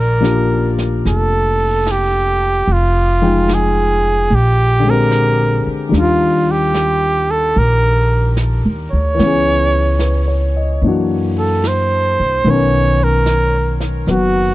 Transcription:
Already playing: A#1
0.00 A#4
0.20 F3 A#3 D4 G4, snare, hi-hat pedal
0.78 snare
1.05 F1 A4, brush sweep, snare
1.86 snare, hi-hat pedal
1.91 G4
2.67 F1, brush sweep
2.72 F4
3.22 F3 G#3 D#4 G5
3.48 snare, hi-hat pedal
3.54 G#4
4.29 A#1, brush sweep
4.35 G4
4.79 D3
4.84 G#3 C4
4.90 G4 A#4
5.11 snare, hi-hat pedal
5.67 muted upright bass stroke
5.89 D#2 D#3 G3
5.93 D4, brush sweep, snare
5.98 F4
6.51 G4
6.74 snare, hi-hat pedal
7.31 A4
7.55 A#1 A#4, brush sweep
8.37 snare, hi-hat pedal
8.65 D#2
8.91 D2 C#5
9.15 E3
9.19 C#2 B3 C#4, brush sweep, snare
9.26 G#4
9.99 B4, snare, hi-hat pedal
10.28 C#5
10.56 D#5
10.82 F#2 E3 A#3 D4, brush sweep
10.87 F#4
11.39 A4
11.64 C5, snare, hi-hat pedal
12.19 C2
12.44 B1 D#3 B3, brush sweep
12.49 C#4 A#4 C#5
13.03 A#4
13.26 snare, hi-hat pedal
13.80 snare
14.07 F#1 F#3 B3 F#4, brush sweep, snare

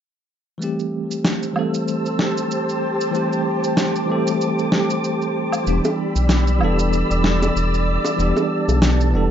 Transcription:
0.58 E3 G3 A3 G4 C5 A5 E6, cabasa
0.62 C4 G4
0.79 cabasa
1.11 cabasa
1.25 snare, cabasa
1.43 cabasa
1.53 E3 G3 A3, low woodblock
1.57 C4 A4
1.74 cabasa
1.88 cabasa
2.06 cabasa
2.19 snare
2.37 cabasa
2.51 cabasa
2.69 cabasa
3.01 cabasa
3.11 E3 G3 A3 D6, cabasa
3.15 C4 G4
3.33 cabasa
3.64 cabasa
3.77 snare, cabasa
3.96 cabasa
4.06 E3 G3 A3
4.10 C4 A4
4.27 cabasa
4.41 cabasa
4.59 cabasa
4.72 snare
4.90 cabasa
5.04 cabasa
5.22 cabasa
5.52 cabasa, low woodblock
5.64 E1 E3 G3 B3 D5 B5 E6, cabasa
5.68 D4 G4
5.84 high bongo, cabasa
6.16 B1, cabasa
6.29 snare, cabasa
6.47 cabasa
6.59 E1 E3 G3 B3, low woodblock
6.63 D4 A4
6.79 cabasa
6.93 cabasa
7.10 E1, cabasa
7.24 snare
7.42 high bongo, cabasa
7.56 E1, cabasa
7.74 cabasa
8.05 high bongo, cabasa
8.16 E1 E3 G3 B3 A5, cabasa
8.21 D4 G4
8.37 high bongo, cabasa
8.68 B1, high bongo, cabasa
8.82 snare, cabasa
9.00 cabasa
9.11 E1 E3 G3 B3
9.15 D4 A4

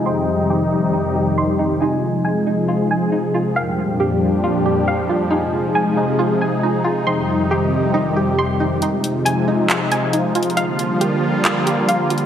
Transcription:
Already playing: C3 D#4
0.06 F2 D#3 F3 G3 D#4 G4 C5 G5 C6
0.50 G4
0.93 D#4
1.15 G4
1.38 C6
1.59 D#4
1.81 F3 G#3 D#4 F4 G#4 D#5 G#5
2.25 G#5
2.47 D#4
2.68 F4
2.91 G#5
3.12 D#4
3.34 F4
3.56 F2 A#2 F3 G3 D4 G4 A#4 F5 G5
4.00 G4
4.44 F4
4.66 G4
4.88 F5
5.09 F4
5.31 C3 G#3 D#4 F4 G#4 D#5 G#5
5.75 G#5
5.97 D#4
6.19 F4
6.41 G#5
6.63 D#4
6.84 F4
7.07 F2 C3 D#3 F3 G3 D#4 G4 C5 G5 C6
7.51 G4
7.94 D#4
8.16 G4
8.39 C6
8.60 D#4
8.82 C3 F3 G#3 D#4 F4, closed hi-hat
9.04 closed hi-hat
9.25 G#5, closed hi-hat
9.48 D#4
9.69 F4, clap, closed hi-hat
9.92 G#5, closed hi-hat
10.13 D#4, closed hi-hat
10.35 F4, closed hi-hat
10.43 closed hi-hat
10.50 closed hi-hat
10.57 D3 G3 A#3 F5, closed hi-hat
10.79 closed hi-hat
11.01 G4, closed hi-hat
11.45 F4, clap, closed hi-hat
11.66 G4, closed hi-hat
11.88 F5, closed hi-hat
12.10 F4, closed hi-hat
12.18 closed hi-hat

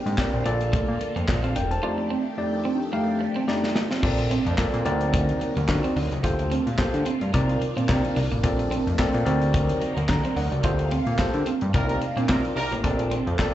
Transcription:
Already playing: D3 A#3 C4 G4
0.06 G#2, closed hi-hat
0.18 C4 G4 A#4 D5, kick, snare, clap
0.33 A#1
0.45 A#1 A#3 F4 A4 D5, closed hi-hat
0.61 closed hi-hat
0.73 A3, kick, closed hi-hat
0.88 A#2
1.01 muted clean electric guitar stroke, closed hi-hat
1.16 F2 A#3, closed hi-hat
1.28 A#1 F4 D5, muted clean electric guitar stroke, kick, snare, clap
1.44 C4 A4 F5, closed hi-hat
1.56 E1 D4 A#4 G5, closed hi-hat
1.71 C5 A5, closed hi-hat
1.82 F2 D#3 A3 D4 D#4 F4 G4 D5
1.98 muted clean electric guitar stroke
2.10 C4
2.37 F2 A3 D#4 G4 D5
2.65 C4
2.92 F2 A3 D#4 G4 F5
3.21 muted clean electric guitar stroke
3.36 C4
3.47 F2 A3 D#4 G4 D5, muted clean electric guitar stroke, snare
3.64 snare
3.76 D#4, snare
3.91 C4, snare
4.02 A#1 C3 A3 A#3 C4 D4 F4 A4 A#4 D5, kick, crash
4.18 muted clean electric guitar stroke, closed hi-hat
4.31 C4, closed hi-hat
4.46 F2, closed hi-hat
4.57 A#2 C4 F4 A4 A#4 D5, kick, snare, clap
4.73 A#2, closed hi-hat
4.85 D2 F#3 A#3 C4 D#4 F#4 A#4 D5, closed hi-hat
5.01 closed hi-hat
5.14 A3, kick, closed hi-hat
5.29 closed hi-hat
5.41 muted clean electric guitar stroke, closed hi-hat
5.56 D2 A#3, closed hi-hat
5.68 D3 C4 D#4 F#4 A#4 D5, muted clean electric guitar stroke, kick, snare, clap
5.84 C4, closed hi-hat
5.96 D2 D4, open hi-hat
6.12 C#2, closed hi-hat
6.23 D2 A3 A#3 F4 G4 A4 C5, kick, closed hi-hat
6.39 muted clean electric guitar stroke, closed hi-hat
6.51 C4, closed hi-hat
6.67 A#2, closed hi-hat
6.78 D3 A#3 F4 G4 A4 C5, kick, snare, clap
6.94 D3, closed hi-hat
7.06 C4, closed hi-hat
7.21 G2, closed hi-hat
7.33 C2 D#3 A#3 C4 D4 D#4 F4 A#4 D5, kick, closed hi-hat
7.49 closed hi-hat
7.62 muted clean electric guitar stroke, closed hi-hat
7.77 A#2 C4, closed hi-hat
7.88 C3 C4 D#4 F4 A#4 D5, muted clean electric guitar stroke, kick, snare, clap
8.05 closed hi-hat
8.16 C2 D4, open hi-hat
8.32 A1 A#3, closed hi-hat
8.43 A#1 C3 A3 A#3 C4 F4 A4 A#4 D5, kick, closed hi-hat
8.59 muted clean electric guitar stroke, closed hi-hat
8.71 C4, closed hi-hat
8.87 F2, closed hi-hat
8.98 A#2 C4 F4 A4 A#4 D5, kick, snare, clap
9.14 A#2, closed hi-hat
9.25 D2 F#3 C4 D#4 F#4 A#4 D5, closed hi-hat
9.42 closed hi-hat
9.54 A3, kick, closed hi-hat
9.69 closed hi-hat
9.82 muted clean electric guitar stroke, closed hi-hat
9.96 D2 A#3, closed hi-hat
10.09 D3 D5 A#5, muted clean electric guitar stroke, kick, snare, clap
10.25 C4, closed hi-hat
10.36 D2 D4 A#4 F#5, open hi-hat
10.52 C#2 F#4 D5, closed hi-hat
10.63 D2 A3 A#3 F4 G4 A4 C5, kick, closed hi-hat
10.79 muted clean electric guitar stroke, closed hi-hat
10.91 C4, closed hi-hat
11.07 A#2, closed hi-hat
11.18 D3 A#3 F4 G4 A4 C5, kick, snare, clap
11.34 D3, closed hi-hat
11.46 C4, closed hi-hat
11.61 G2, closed hi-hat
11.73 C2 D#3 A#3 C4 D4 D#4 F4 G4 A#4 D5, kick, closed hi-hat
11.89 F4 G4 A#4, closed hi-hat
12.02 muted clean electric guitar stroke, closed hi-hat
12.16 A#2 C4, closed hi-hat
12.29 C3 C4 D#4 F4 G4 A#4 D5, muted clean electric guitar stroke, kick, snare, clap
12.45 closed hi-hat
12.56 C2 D4 F4 G4 A#4, open hi-hat
12.71 A1 A#3, closed hi-hat
12.83 A#1 C3 A3 A#3 C4 F4 A4 A#4 D5, kick, closed hi-hat
12.99 muted clean electric guitar stroke, closed hi-hat
13.11 C4, closed hi-hat
13.27 F2, closed hi-hat
13.39 A#2 C4 F4 A4 A#4 D5, kick, snare, clap

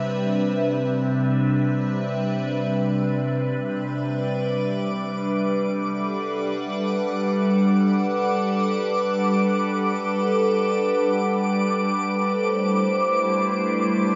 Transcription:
Already playing: C3 G3 C4 D4 B4 E5
4.03 G3 D6
5.56 A4
5.88 F#5
11.92 A3
12.19 C5
12.45 E4

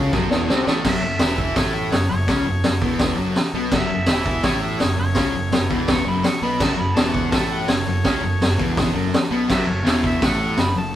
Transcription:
Already playing: C#2 C#3 C#4 F#4 A4 C#5
0.12 F#1 F#2 F#3, kick, snare
0.30 E1 E2 E3, snare
0.48 C2 C3 C4, snare
0.67 A1 A2 A3, snare
0.84 F#1 F#2 F#3 F#4 A4 C#5 E5, kick, snare, crash
1.01 F#1 F#2
1.19 E1 E2 E3, snare, open hi-hat
1.38 kick
1.56 A1 A2 A3 C#5, kick, snare, open hi-hat
1.74 E5
1.91 F#1 F#2 C#5, snare, open hi-hat
2.09 F#1 F#2 C#5
2.28 C#2 C#3 C#4, kick, snare, open hi-hat
2.45 F#1 F#2
2.63 F#1 F#2, snare, open hi-hat
2.82 E1 E2 E3, kick
2.99 kick, snare, open hi-hat
3.16 F#1 F#2 F#3
3.36 snare, open hi-hat
3.54 B1 B2 B3
3.72 F#1 F#2 F#3 F#4 A4 E5, kick, snare, crash
3.90 F#1 F#2
4.06 E1 E2 E3, snare, open hi-hat
4.26 kick
4.43 A1 A2 A3 C#5, kick, snare, open hi-hat
4.64 E5
4.80 F#1 F#2 C#5, snare, open hi-hat
4.97 F#1 F#2 C#5
5.15 C#2 C#3 C#4, kick, snare, open hi-hat
5.34 F#1 F#2
5.52 F#1 F#2, snare, open hi-hat
5.70 E1 E2 E3, kick
5.88 C#6, kick, snare, open hi-hat
6.06 F#1 F#2 F#3 B5
6.24 C#6, snare, open hi-hat
6.42 B1 B2 B3 B5
6.59 F#1 F#2 F#3 F#4 A4 C#5 A5, kick, snare, crash
6.77 F#1 F#2 B5
6.95 E1 E2 E3 A5, snare, open hi-hat
7.14 F#5, kick
7.31 A1 A2 A3 A5, kick, snare, open hi-hat
7.52 F#5
7.68 F#1 F#2 C#5, snare, open hi-hat
7.87 F#1 F#2
8.04 C#2 C#3 C#4, kick, snare, open hi-hat
8.22 F#1 F#2
8.40 F#1 F#2, snare, open hi-hat
8.58 E1 E2 E3, kick
8.77 kick, snare, open hi-hat
8.95 F#1 F#2 F#3
9.14 snare, open hi-hat
9.31 B1 B2 B3
9.47 F#1 F#2 F#3 F#4 A4 C#5, kick, snare, crash
9.51 E5
9.68 F#1 F#2 C#5
9.84 E1 E2 E3, snare, open hi-hat
10.04 E5, kick
10.21 A1 A2 A3, kick, snare, open hi-hat
10.25 F#5
10.57 F#1 F#2, snare, open hi-hat
10.61 B5
10.76 F#1 F#2 A5

